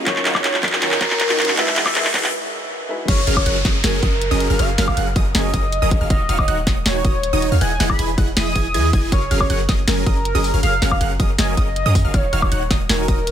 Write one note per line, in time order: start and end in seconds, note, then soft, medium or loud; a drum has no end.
0.00 riser medium
0.04 0.17 D#3 medium
0.04 0.60 F#3 loud
0.04 1.56 F#3 medium
0.04 0.60 C#4 loud
0.04 1.56 D#4 medium
0.04 0.61 D#4 medium
0.04 0.17 D#4 medium
0.04 1.56 F4 medium
0.04 0.61 F4 medium
0.04 0.17 F#4 medium
0.04 0.62 A#4 loud
0.04 0.25 C#5 loud
0.04 1.56 C#5 medium
0.04 0.17 C#5 medium
0.04 0.17 F5 medium
0.04 kick loud
0.04 clap medium
0.04 closed hi-hat medium
0.16 clap medium
0.25 0.42 D#3 medium
0.25 0.42 D#4 medium
0.25 0.42 F#4 medium
0.25 0.42 C#5 medium
0.25 0.42 F5 loud
0.25 clap medium
0.25 closed hi-hat medium
0.35 0.54 C#5 loud
0.35 kick medium
0.35 clap medium
0.35 high woodblock medium
0.44 0.55 D#3 medium
0.44 0.55 D#4 medium
0.44 0.55 F#4 medium
0.44 0.55 C#5 medium
0.44 0.55 F#5 loud
0.44 clap medium
0.44 closed hi-hat medium
0.54 clap medium
0.61 0.74 D#3 medium
0.61 1.35 F#3 medium
0.61 1.36 C#4 medium
0.61 1.36 D#4 medium
0.61 0.74 D#4 medium
0.61 1.37 F4 medium
0.61 0.74 F#4 medium
0.61 0.74 C#5 medium
0.61 0.74 D#5 loud
0.61 kick loud
0.61 clap loud
0.61 closed hi-hat soft
0.65 1.37 A#4 medium
0.65 closed hi-hat medium
0.73 clap medium
0.82 0.99 D#3 medium
0.82 0.99 D#4 medium
0.82 0.99 F#4 medium
0.82 1.50 A#4 loud
0.82 0.99 C#5 medium
0.82 0.99 G#5 medium
0.82 clap medium
0.82 closed hi-hat medium
0.91 clap medium
1.01 1.12 D#3 medium
1.01 1.12 F#4 medium
1.01 1.12 C#5 medium
1.01 kick loud
1.01 clap loud
1.01 closed hi-hat medium
1.10 clap medium
1.20 clap loud
1.20 closed hi-hat medium
1.29 1.46 D#3 medium
1.29 1.46 D#4 medium
1.29 1.46 F#4 medium
1.29 1.46 C#5 medium
1.29 1.46 D#5 loud
1.29 clap medium
1.38 1.55 F#3 medium
1.38 1.55 C#4 medium
1.38 1.55 D#4 medium
1.38 1.55 F4 medium
1.38 1.56 A#4 medium
1.38 clap loud
1.38 closed hi-hat soft
1.42 closed hi-hat medium
1.45 1.55 D#3 medium
1.45 1.55 D#4 medium
1.45 1.55 F#4 medium
1.45 1.55 C#5 medium
1.45 1.55 F5 medium
1.45 clap medium
1.45 closed hi-hat medium
1.55 1.68 E3 medium
1.55 2.32 E3 medium
1.55 2.11 G#3 loud
1.55 2.32 G#3 medium
1.55 2.11 D#4 medium
1.55 2.12 E4 medium
1.55 1.68 E4 medium
1.55 2.32 F#4 medium
1.55 2.12 F#4 loud
1.55 1.68 G#4 medium
1.55 2.32 D#5 medium
1.55 1.68 D#5 medium
1.55 1.76 E5 loud
1.55 1.68 F#5 medium
1.55 clap loud
1.55 closed hi-hat medium
1.59 2.13 B4 loud
1.67 clap medium
1.76 1.93 E3 medium
1.76 1.93 E4 medium
1.76 1.93 G#4 medium
1.76 1.93 D#5 medium
1.76 1.93 F#5 loud
1.76 clap loud
1.76 closed hi-hat medium
1.86 2.05 E5 loud
1.86 kick medium
1.86 clap medium
1.86 high woodblock medium
1.95 2.06 E3 medium
1.95 2.06 E4 medium
1.95 2.06 G#4 medium
1.95 2.06 D#5 medium
1.95 2.06 G#5 medium
1.95 clap loud
1.95 closed hi-hat medium
2.05 clap medium
2.12 2.25 E3 medium
2.12 2.86 G#3 medium
2.12 2.87 D#4 medium
2.12 2.25 E4 medium
2.12 2.87 E4 medium
2.12 2.88 F#4 medium
2.12 2.25 G#4 medium
2.12 2.25 D#5 medium
2.12 2.25 F#5 loud
2.12 kick loud
2.12 clap loud
2.12 closed hi-hat soft
2.16 2.88 B4 medium
2.16 closed hi-hat medium
2.23 clap loud
2.89 3.06 G#3 medium
2.89 3.06 D#4 medium
2.89 3.06 E4 medium
2.89 3.06 F#4 medium
2.89 3.07 B4 loud
3.08 3.25 F#1 loud
3.08 3.19 F#3 medium
3.08 3.19 C#4 medium
3.08 3.19 G#4 medium
3.08 3.19 A#4 medium
3.08 3.27 C#5 loud
3.08 3.19 F5 medium
3.08 3.19 F6 medium
3.08 kick loud
3.08 closed hi-hat medium
3.08 crash loud
3.08 downlifter medium
3.27 3.44 F#1 medium
3.27 3.44 F#3 medium
3.27 3.44 C#4 medium
3.27 3.44 G#4 medium
3.27 3.44 A#4 medium
3.27 3.44 F5 loud
3.27 3.44 F6 loud
3.27 closed hi-hat medium
3.37 3.56 C#5 loud
3.37 kick medium
3.37 high woodblock medium
3.46 3.63 F#1 loud
3.46 3.57 F#3 medium
3.46 3.57 C#4 medium
3.46 3.57 G#4 medium
3.46 3.57 A#4 medium
3.46 3.57 F#5 loud
3.46 3.57 F#6 medium
3.46 closed hi-hat medium
3.65 3.82 F#1 medium
3.65 3.76 F#3 medium
3.65 3.76 C#4 medium
3.65 3.76 G#4 medium
3.65 3.76 A#4 medium
3.65 3.76 D#5 loud
3.65 3.76 D#6 loud
3.65 kick loud
3.65 snare medium
3.65 closed hi-hat medium
3.84 4.01 F#1 medium
3.84 4.00 F#3 medium
3.84 4.00 C#4 medium
3.84 4.00 G#4 medium
3.84 4.61 A#4 loud
3.84 4.00 A#4 medium
3.84 4.00 G#5 medium
3.84 4.00 G#6 medium
3.84 snare loud
3.84 closed hi-hat medium
4.03 4.29 F#1 loud
4.03 4.14 F#3 medium
4.03 4.14 C#4 medium
4.03 4.14 A#4 medium
4.03 4.14 D#5 medium
4.03 4.14 D#6 medium
4.03 kick loud
4.03 closed hi-hat medium
4.22 closed hi-hat medium
4.31 4.48 F#1 loud
4.31 4.48 F#3 medium
4.31 4.48 C#4 medium
4.31 4.48 G#4 medium
4.31 4.48 A#4 medium
4.31 4.48 D#5 loud
4.31 4.48 D#6 loud
4.40 closed hi-hat medium
4.50 4.57 F#1 medium
4.50 4.57 F#3 medium
4.50 4.57 C#4 medium
4.50 4.57 G#4 medium
4.50 4.57 A#4 medium
4.50 4.57 F5 medium
4.50 4.57 F6 medium
4.59 4.76 F#1 loud
4.59 4.70 F#3 medium
4.59 4.70 C#4 medium
4.59 4.70 G#4 medium
4.59 4.70 A#4 medium
4.59 4.70 F5 medium
4.59 4.78 F5 loud
4.59 4.70 F6 medium
4.59 closed hi-hat medium
4.78 4.95 F#1 medium
4.78 4.95 F#3 medium
4.78 4.95 C#4 medium
4.78 4.95 G#4 medium
4.78 4.95 A#4 medium
4.78 4.95 F5 loud
4.78 4.95 F6 loud
4.78 snare medium
4.78 closed hi-hat medium
4.88 5.07 F5 loud
4.88 kick medium
4.88 high woodblock medium
4.97 5.14 F#1 loud
4.97 5.08 F#3 medium
4.97 5.08 C#4 medium
4.97 5.08 G#4 medium
4.97 5.08 A#4 medium
4.97 5.08 F#5 loud
4.97 5.08 F#6 medium
4.97 closed hi-hat medium
5.16 5.33 F#1 loud
5.16 5.27 F#3 loud
5.16 5.27 C#4 medium
5.16 5.27 G#4 medium
5.16 5.27 A#4 medium
5.16 5.27 D#5 loud
5.16 5.27 D#6 loud
5.16 kick loud
5.16 closed hi-hat medium
5.35 5.52 F#1 loud
5.35 5.51 F#3 medium
5.35 5.51 C#4 medium
5.35 5.51 G#4 medium
5.35 5.51 A#4 medium
5.35 6.03 D#5 loud
5.35 5.51 G#5 medium
5.35 5.51 G#6 medium
5.35 snare loud
5.35 closed hi-hat medium
5.54 5.80 F#1 loud
5.54 5.64 F#3 medium
5.54 5.65 C#4 medium
5.54 5.65 G#4 medium
5.54 5.65 A#4 medium
5.54 5.65 D#5 medium
5.54 5.65 D#6 medium
5.54 kick medium
5.54 closed hi-hat medium
5.72 closed hi-hat medium
5.82 5.99 F#1 medium
5.82 5.99 F#3 loud
5.82 5.99 C#4 medium
5.82 5.99 G#4 medium
5.82 5.99 A#4 medium
5.82 5.99 D#5 loud
5.82 5.99 D#6 loud
5.91 kick loud
5.91 closed hi-hat medium
6.01 6.08 F#1 loud
6.01 6.08 F#3 medium
6.01 6.08 C#4 medium
6.01 6.08 G#4 medium
6.01 6.08 A#4 medium
6.01 6.08 F5 medium
6.01 6.08 F6 medium
6.10 6.27 D#1 loud
6.10 6.21 D#3 medium
6.10 6.21 D#4 medium
6.10 6.21 F#4 medium
6.10 6.21 C#5 medium
6.10 6.29 D#5 loud
6.10 6.21 F5 medium
6.10 6.21 F6 medium
6.10 kick loud
6.10 closed hi-hat medium
6.29 6.46 D#1 loud
6.29 6.46 D#3 medium
6.29 6.46 D#4 medium
6.29 6.46 F#4 medium
6.29 6.46 C#5 medium
6.29 6.46 F5 loud
6.29 6.46 F6 loud
6.29 closed hi-hat medium
6.39 6.58 D#5 loud
6.39 kick medium
6.39 high woodblock medium
6.48 6.65 D#1 loud
6.48 6.59 D#3 medium
6.48 6.59 D#4 medium
6.48 6.59 F#4 medium
6.48 6.59 C#5 medium
6.48 6.59 F#5 loud
6.48 6.59 F#6 medium
6.48 closed hi-hat medium
6.67 6.84 D#1 loud
6.67 6.78 D#3 medium
6.67 6.78 D#4 medium
6.67 6.78 F#4 medium
6.67 6.78 C#5 medium
6.67 6.78 D#5 loud
6.67 6.78 D#6 loud
6.67 kick loud
6.67 snare medium
6.67 closed hi-hat medium
6.86 7.03 D#1 medium
6.86 7.02 D#3 medium
6.86 7.02 D#4 medium
6.86 7.02 F#4 medium
6.86 7.54 C#5 loud
6.86 7.02 C#5 medium
6.86 7.02 G#5 medium
6.86 7.02 G#6 medium
6.86 snare loud
6.86 closed hi-hat medium
7.04 7.31 D#1 loud
7.04 7.15 D#3 medium
7.04 7.15 D#4 medium
7.04 7.15 F#4 medium
7.04 7.15 C#5 medium
7.04 7.15 D#5 medium
7.04 7.15 D#6 medium
7.04 kick loud
7.04 closed hi-hat medium
7.23 closed hi-hat medium
7.33 7.50 D#1 loud
7.33 7.50 D#3 medium
7.33 7.50 D#4 medium
7.33 7.50 F#4 medium
7.33 7.50 C#5 medium
7.33 7.50 D#5 loud
7.33 7.50 D#6 loud
7.42 closed hi-hat medium
7.52 7.59 D#2 medium
7.52 7.59 D#3 medium
7.52 7.59 D#4 medium
7.52 7.59 F#4 medium
7.52 7.59 C#5 medium
7.52 7.59 F5 medium
7.52 7.59 F6 medium
7.61 7.78 E1 loud
7.61 7.72 E3 medium
7.61 7.72 E4 medium
7.61 7.72 G#4 medium
7.61 7.72 D#5 medium
7.61 7.72 F#5 medium
7.61 7.91 G#5 loud
7.61 7.72 F#6 medium
7.61 closed hi-hat medium
7.80 7.97 E1 loud
7.80 7.97 E3 medium
7.80 7.97 E4 medium
7.80 7.97 G#4 medium
7.80 7.97 D#5 medium
7.80 7.97 F#5 loud
7.80 7.97 F#6 loud
7.80 snare medium
7.80 closed hi-hat medium
7.90 8.09 B5 loud
7.90 kick medium
7.90 high woodblock medium
7.99 8.16 E1 medium
7.99 8.10 E3 medium
7.99 8.10 E4 medium
7.99 8.10 G#4 medium
7.99 8.10 D#5 medium
7.99 8.10 G#5 loud
7.99 8.10 G#6 medium
7.99 closed hi-hat medium
8.18 8.35 E1 medium
8.18 8.29 E3 loud
8.18 8.29 E4 medium
8.18 8.29 G#4 medium
8.18 8.29 D#5 medium
8.18 8.29 F#5 loud
8.18 8.29 F#6 loud
8.18 kick loud
8.18 closed hi-hat medium
8.37 8.54 E1 loud
8.37 8.53 E3 medium
8.37 8.53 E4 medium
8.37 8.53 G#4 medium
8.37 8.53 D#5 medium
8.37 8.53 B5 medium
8.37 9.05 D#6 loud
8.37 8.53 B6 medium
8.37 snare loud
8.37 closed hi-hat medium
8.55 8.76 E1 loud
8.55 8.66 E3 medium
8.55 8.66 E4 medium
8.55 8.66 G#4 medium
8.55 8.66 D#5 medium
8.55 8.66 G#5 loud
8.55 8.66 G#6 loud
8.55 kick medium
8.55 closed hi-hat medium
8.74 8.91 E2 loud
8.74 8.90 E3 medium
8.74 8.91 E4 medium
8.74 8.90 G#4 medium
8.74 8.91 D#5 medium
8.74 8.91 G#5 loud
8.74 8.91 G#6 loud
8.74 closed hi-hat medium
8.93 9.14 E1 loud
8.93 9.10 E3 loud
8.93 9.10 E4 medium
8.93 9.10 G#4 medium
8.93 9.10 D#5 medium
8.93 9.10 G#5 loud
8.93 9.10 G#6 loud
8.93 kick loud
8.93 closed hi-hat medium
9.12 9.29 F#1 loud
9.12 9.23 F#3 medium
9.12 9.23 C#4 medium
9.12 9.23 G#4 medium
9.12 9.23 A#4 medium
9.12 9.31 C#5 loud
9.12 9.23 F5 medium
9.12 9.23 F6 medium
9.12 kick loud
9.12 closed hi-hat medium
9.31 9.48 F#1 loud
9.31 9.48 F#3 medium
9.31 9.48 C#4 medium
9.31 9.48 G#4 medium
9.31 9.48 A#4 medium
9.31 9.48 F5 loud
9.31 9.48 F6 loud
9.31 closed hi-hat medium
9.41 9.59 C#5 loud
9.41 kick medium
9.41 high woodblock medium
9.50 9.67 F#1 loud
9.50 9.61 F#3 medium
9.50 9.61 C#4 medium
9.50 9.61 G#4 medium
9.50 9.61 A#4 medium
9.50 9.61 F#5 loud
9.50 9.61 F#6 medium
9.50 closed hi-hat medium
9.69 9.86 F#1 loud
9.69 9.80 F#3 loud
9.69 9.80 C#4 medium
9.69 9.80 G#4 medium
9.69 9.80 A#4 medium
9.69 9.80 D#5 loud
9.69 9.80 D#6 loud
9.69 kick loud
9.69 snare medium
9.69 closed hi-hat medium
9.88 10.05 F#1 loud
9.88 10.04 F#3 medium
9.88 10.04 C#4 medium
9.88 10.04 G#4 medium
9.88 10.04 A#4 medium
9.88 10.56 A#4 loud
9.88 10.04 G#5 medium
9.88 10.04 G#6 medium
9.88 snare loud
9.88 closed hi-hat medium
10.06 10.33 F#1 loud
10.06 10.17 F#3 medium
10.06 10.17 C#4 medium
10.06 10.17 G#4 medium
10.06 10.17 A#4 medium
10.06 10.17 D#5 medium
10.06 10.17 D#6 medium
10.06 kick loud
10.06 closed hi-hat medium
10.25 closed hi-hat medium
10.35 10.52 F#1 loud
10.35 10.51 F#3 medium
10.35 10.51 C#4 medium
10.35 10.51 G#4 medium
10.35 10.51 A#4 medium
10.35 10.52 D#5 loud
10.35 10.51 D#6 loud
10.44 open hi-hat medium
10.54 10.61 F#1 loud
10.54 10.61 F#3 medium
10.54 10.61 C#4 medium
10.54 10.61 G#4 medium
10.54 10.61 A#4 medium
10.54 10.61 F5 medium
10.54 10.61 F6 medium
10.63 10.80 F#1 loud
10.63 10.74 F#3 medium
10.63 10.74 C#4 medium
10.63 10.74 G#4 medium
10.63 10.74 A#4 medium
10.63 10.74 F5 medium
10.63 10.82 F5 loud
10.63 10.74 F6 medium
10.63 closed hi-hat medium
10.82 10.99 F#1 loud
10.82 10.99 F#3 medium
10.82 10.99 C#4 medium
10.82 10.99 G#4 medium
10.82 10.99 A#4 medium
10.82 10.99 F5 loud
10.82 10.99 F6 loud
10.82 snare medium
10.82 closed hi-hat medium
10.91 11.10 F5 loud
10.91 kick medium
10.91 high woodblock medium
11.01 11.18 F#1 loud
11.01 11.12 F#3 medium
11.01 11.12 C#4 medium
11.01 11.12 G#4 medium
11.01 11.12 A#4 medium
11.01 11.12 F#5 medium
11.01 11.12 F#6 medium
11.01 closed hi-hat medium
11.20 11.37 F#1 medium
11.20 11.31 F#3 medium
11.20 11.31 C#4 medium
11.20 11.31 G#4 medium
11.20 11.31 A#4 medium
11.20 11.31 D#5 loud
11.20 11.31 D#6 loud
11.20 kick loud
11.20 closed hi-hat medium
11.38 11.56 F#1 loud
11.38 11.55 F#3 medium
11.38 11.55 C#4 medium
11.38 11.55 G#4 medium
11.38 11.55 A#4 medium
11.38 12.15 D#5 loud
11.38 11.55 G#5 medium
11.38 11.55 G#6 medium
11.38 snare loud
11.38 closed hi-hat medium
11.57 11.84 F#1 loud
11.57 11.68 F#3 medium
11.57 11.68 C#4 medium
11.57 11.68 G#4 medium
11.57 11.68 A#4 medium
11.57 11.68 D#5 medium
11.57 11.68 D#6 medium
11.57 kick medium
11.57 closed hi-hat medium
11.76 closed hi-hat medium
11.86 12.03 F#2 loud
11.86 12.02 F#3 medium
11.86 12.02 C#4 medium
11.86 12.02 G#4 medium
11.86 12.02 A#4 medium
11.86 12.02 D#5 loud
11.86 12.02 D#6 loud
11.95 kick loud
11.95 open hi-hat medium
12.05 12.12 F#1 loud
12.05 12.12 F#3 medium
12.05 12.12 C#4 medium
12.05 12.12 G#4 medium
12.05 12.12 A#4 medium
12.05 12.12 F5 medium
12.05 12.12 F6 medium
12.14 12.31 D#1 loud
12.14 12.25 D#3 medium
12.14 12.25 D#4 medium
12.14 12.25 F#4 medium
12.14 12.33 C#5 loud
12.14 12.25 C#5 medium
12.14 12.25 F5 medium
12.14 12.25 F6 medium
12.14 kick loud
12.14 closed hi-hat medium
12.33 12.50 D#1 medium
12.33 12.50 D#3 medium
12.33 12.50 D#4 medium
12.33 12.50 F#4 medium
12.33 12.50 C#5 medium
12.33 12.50 F5 loud
12.33 12.50 F6 loud
12.33 closed hi-hat medium
12.42 12.61 C#5 loud
12.42 kick medium
12.42 high woodblock medium
12.52 12.69 D#1 loud
12.52 12.63 D#3 medium
12.52 12.63 D#4 medium
12.52 12.63 F#4 medium
12.52 12.63 C#5 medium
12.52 12.63 F#5 loud
12.52 12.63 F#6 medium
12.52 closed hi-hat medium
12.71 12.88 D#1 loud
12.71 12.81 D#3 medium
12.71 12.81 D#4 medium
12.71 12.81 F#4 medium
12.71 12.81 C#5 medium
12.71 12.81 D#5 loud
12.71 12.81 D#6 loud
12.71 kick loud
12.71 snare medium
12.71 closed hi-hat medium
12.89 13.07 D#1 loud
12.89 13.06 D#3 medium
12.89 13.06 D#4 medium
12.89 13.06 F#4 medium
12.89 13.31 A#4 loud
12.89 13.06 C#5 medium
12.89 13.06 G#5 medium
12.89 13.06 G#6 medium
12.89 snare loud
12.89 closed hi-hat medium
13.08 13.31 D#1 loud
13.08 13.19 D#4 medium
13.08 13.19 F#4 medium
13.08 13.19 D#5 medium
13.08 13.19 D#6 medium
13.08 kick loud
13.08 closed hi-hat medium
13.27 closed hi-hat medium